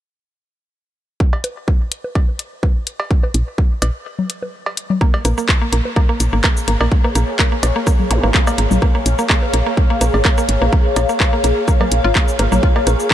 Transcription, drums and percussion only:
1.20 kick
1.33 cowbell
1.44 closed hi-hat, low bongo
1.68 kick
1.92 closed hi-hat
2.04 low bongo
2.15 kick, cowbell
2.39 closed hi-hat
2.63 kick, low bongo
2.87 closed hi-hat
3.00 cowbell
3.11 kick
3.23 low bongo
3.34 closed hi-hat
3.58 kick
3.82 closed hi-hat, cowbell, low bongo
4.19 low conga
4.30 closed hi-hat
4.42 low bongo
4.66 cowbell
4.77 closed hi-hat
4.90 low conga
5.01 kick
5.14 cowbell
5.25 closed hi-hat, low bongo, shaker
5.38 shaker
5.49 kick, clap
5.73 closed hi-hat
5.85 low bongo
5.96 kick, cowbell
6.20 closed hi-hat, shaker
6.44 kick, clap, low bongo
6.57 shaker
6.68 closed hi-hat
6.81 cowbell
6.92 kick
7.04 low bongo
7.15 closed hi-hat, shaker
7.39 kick, clap
7.63 closed hi-hat, cowbell, low bongo, shaker
7.87 kick, shaker
8.00 low conga
8.11 closed hi-hat
8.23 low bongo
8.34 kick, clap
8.47 cowbell, shaker
8.58 closed hi-hat
8.71 low conga, shaker
8.82 kick, low bongo
9.06 closed hi-hat, shaker
9.19 shaker
9.30 kick, clap, cowbell
9.43 low bongo
9.54 closed hi-hat
9.77 kick
10.01 closed hi-hat, low bongo, shaker
10.14 cowbell
10.25 kick, clap
10.38 shaker
10.49 closed hi-hat
10.62 low bongo
10.73 kick
10.96 closed hi-hat, cowbell, shaker
11.09 shaker
11.20 kick, clap, low bongo
11.44 closed hi-hat, shaker
11.68 kick, shaker
11.81 cowbell, low bongo, low conga
11.92 closed hi-hat
12.15 kick, clap
12.28 shaker
12.39 closed hi-hat, low bongo
12.52 low conga, shaker
12.63 kick
12.76 cowbell
12.87 closed hi-hat, low bongo, shaker
13.00 shaker
13.11 kick, clap

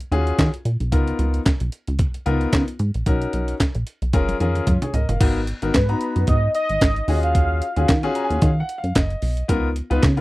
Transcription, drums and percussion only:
0.00 closed hi-hat
0.12 closed hi-hat
0.27 closed hi-hat
0.39 kick, snare, clap, closed hi-hat
0.54 closed hi-hat
0.65 closed hi-hat
0.80 closed hi-hat
0.92 kick, closed hi-hat
1.07 closed hi-hat
1.19 closed hi-hat
1.34 closed hi-hat
1.46 kick, snare, clap, closed hi-hat
1.60 closed hi-hat
1.72 closed hi-hat
1.87 closed hi-hat
1.99 kick, closed hi-hat
2.14 closed hi-hat
2.26 closed hi-hat
2.41 closed hi-hat
2.53 kick, snare, clap, closed hi-hat
2.68 closed hi-hat
2.79 closed hi-hat
2.94 closed hi-hat
3.06 kick, closed hi-hat
3.22 closed hi-hat
3.33 closed hi-hat
3.48 closed hi-hat
3.60 kick, snare, clap, closed hi-hat
3.75 closed hi-hat
3.87 closed hi-hat
4.02 closed hi-hat
4.13 kick, closed hi-hat, high tom
4.29 closed hi-hat, high tom
4.40 closed hi-hat, mid tom
4.55 closed hi-hat, mid tom
4.67 kick, closed hi-hat
4.82 closed hi-hat, mid tom
4.94 closed hi-hat, floor tom
5.09 closed hi-hat, floor tom
5.21 kick, closed hi-hat, crash
5.47 closed hi-hat
5.62 closed hi-hat
5.74 kick, snare, clap, closed hi-hat
5.89 closed hi-hat
6.01 closed hi-hat
6.16 closed hi-hat
6.27 kick, closed hi-hat
6.55 closed hi-hat
6.69 closed hi-hat
6.81 kick, snare, clap, closed hi-hat
6.96 closed hi-hat
7.08 open hi-hat
7.23 closed hi-hat
7.35 kick, closed hi-hat
7.62 closed hi-hat
7.76 closed hi-hat
7.89 kick, snare, clap, closed hi-hat
8.03 closed hi-hat
8.15 closed hi-hat
8.30 closed hi-hat
8.42 kick, closed hi-hat
8.69 closed hi-hat
8.84 closed hi-hat
8.95 kick, snare, clap, closed hi-hat
9.10 closed hi-hat
9.22 open hi-hat
9.37 closed hi-hat
9.49 kick, closed hi-hat
9.76 closed hi-hat
9.91 closed hi-hat
10.03 kick, snare, clap, closed hi-hat
10.17 closed hi-hat

